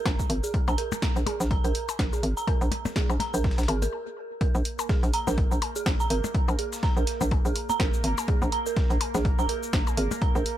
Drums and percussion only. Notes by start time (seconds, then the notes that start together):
0.06 kick, snare, closed hi-hat, percussion blips
0.19 kick, cabasa
0.30 closed hi-hat, open hi-hat
0.44 cabasa
0.54 kick, closed hi-hat
0.68 percussion blips, cabasa
0.78 closed hi-hat, open hi-hat
0.92 percussion blips, cabasa
1.02 kick, snare, closed hi-hat
1.16 closed hi-hat, cabasa
1.26 closed hi-hat, open hi-hat, percussion blips
1.40 snare, cabasa
1.51 kick, closed hi-hat
1.65 open hi-hat, cabasa
1.75 closed hi-hat, open hi-hat
1.89 open hi-hat, percussion blips, cabasa
1.99 kick, snare, closed hi-hat
2.13 cabasa
2.23 closed hi-hat, open hi-hat
2.37 cabasa
2.47 kick, closed hi-hat, percussion blips
2.61 percussion blips, cabasa
2.72 closed hi-hat, open hi-hat, percussion blips
2.85 snare, percussion blips, cabasa
2.96 kick, snare, closed hi-hat
3.10 percussion blips, cabasa
3.20 snare, closed hi-hat, open hi-hat, percussion blips
3.34 cabasa
3.44 kick, snare, closed hi-hat
3.51 snare, closed hi-hat
3.58 snare, closed hi-hat, open hi-hat, cabasa
3.63 snare, closed hi-hat
3.68 closed hi-hat, open hi-hat, percussion blips
3.82 open hi-hat, percussion blips, cabasa
4.41 kick, closed hi-hat
4.55 percussion blips, cabasa
4.65 closed hi-hat, open hi-hat
4.79 percussion blips, cabasa
4.89 kick, snare, closed hi-hat
5.03 closed hi-hat, cabasa
5.14 closed hi-hat, open hi-hat
5.27 snare, percussion blips, cabasa
5.38 kick, closed hi-hat
5.52 cabasa
5.62 closed hi-hat, open hi-hat, percussion blips
5.76 cabasa
5.86 kick, snare, closed hi-hat
6.00 cabasa
6.10 closed hi-hat, open hi-hat
6.24 percussion blips, cabasa
6.34 kick, closed hi-hat
6.48 percussion blips, cabasa
6.59 closed hi-hat, open hi-hat
6.73 snare, cabasa
6.83 kick, snare, closed hi-hat
6.97 cabasa
7.07 snare, closed hi-hat, open hi-hat
7.21 percussion blips, cabasa
7.31 kick, closed hi-hat, percussion blips
7.45 cabasa
7.55 closed hi-hat, open hi-hat
7.69 percussion blips, cabasa
7.80 kick, snare, closed hi-hat
7.94 cabasa
8.04 closed hi-hat, open hi-hat
8.18 percussion blips, cabasa
8.28 kick, closed hi-hat
8.42 percussion blips, cabasa
8.52 closed hi-hat, open hi-hat
8.66 cabasa
8.77 kick, snare, closed hi-hat
8.90 closed hi-hat, cabasa
9.01 closed hi-hat, open hi-hat, percussion blips
9.15 snare, percussion blips, cabasa
9.25 kick, closed hi-hat
9.39 cabasa
9.49 closed hi-hat, open hi-hat
9.63 cabasa
9.73 kick, snare, closed hi-hat
9.87 percussion blips, cabasa
9.97 closed hi-hat, open hi-hat
10.11 percussion blips, cabasa
10.22 kick, closed hi-hat
10.35 percussion blips, cabasa
10.46 closed hi-hat, open hi-hat